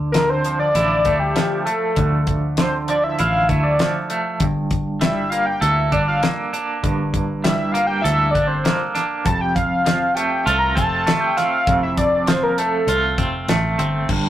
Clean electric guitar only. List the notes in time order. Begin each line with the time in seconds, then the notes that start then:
Already playing: D3
0.14 D3
0.45 F3
0.75 E4
1.05 A3
1.36 F3
1.66 A3
1.97 D3
2.58 D3
2.89 F3
3.19 E4
3.49 A3
3.80 F3
4.10 A3
4.41 G2
5.01 G3
5.32 A#3
5.61 A4
5.92 D4
6.23 A#3
6.53 D4
6.83 G2
7.44 G3
7.74 A#3
8.04 A4
8.34 D4
8.64 A#3
8.95 D4
9.25 F2
9.86 F3
10.16 A3
10.46 F4
10.76 C4
11.07 A3
11.37 C4
11.68 F2
12.28 F3
12.59 A3
12.89 F4
13.18 C4
13.49 A3
13.79 C4
14.09 G2